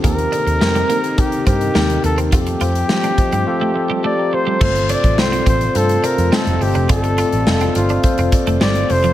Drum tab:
CC |----------------|----------------|x---------------|----------------|
HH |xxxx-xxxxxxx-xxx|xxxx-xxx--------|-xxx-xxxxxxx-xox|xxxx-xxxxxxx-xox|
SD |----o-------o---|----o-----------|----o-------o---|----o-------o---|
BD |o-------o-o-----|o-----o---------|o--o--o---------|o-------o-o-----|